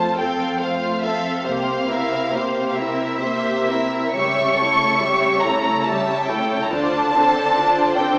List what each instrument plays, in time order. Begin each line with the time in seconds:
Already playing: cello section F2, viola section A3 F4, violin section C5 A5
0.17 violin section A4 F5 G5, viola section A4
0.21 viola section C4
0.59 viola section A3 F4, violin section C5 F5
1.01 violin section A4 E5 F5, viola section A4
1.05 viola section C4
1.44 double bass section C2, cello section C3, viola section A#3 G4, violin section C5 F5
1.88 viola section C4 E4, violin section A#4 E5
2.33 viola section A#3 G4, violin section C5
2.68 violin section F5
2.74 viola section C4 E4, violin section A#4 E5
3.20 viola section A#3 G4, violin section C5
3.67 viola section C4 E4, violin section A#4 E5
4.13 double bass section C#2, cello section C#3, viola section G3 G4, violin section C#5 E5 C#6
4.57 viola section A3 E4, violin section A4 C#5
5.00 viola section G3 G4, violin section C#5 E5
5.43 viola section A3 E4, violin section A4 C#5 A#5
5.86 viola section G3 G4, violin section C#5 E5 A5
6.28 viola section A3 E4, violin section A4 C#5 G5
6.63 violin section A#5
6.70 double bass section D2, cello section D3, viola section D4 F4, violin section C5 D5 A5
7.14 viola section C4 D4, violin section A4 C5
7.56 viola section D4 F4, violin section C5 D5
7.96 viola section C4 D4, violin section A4 C5 G5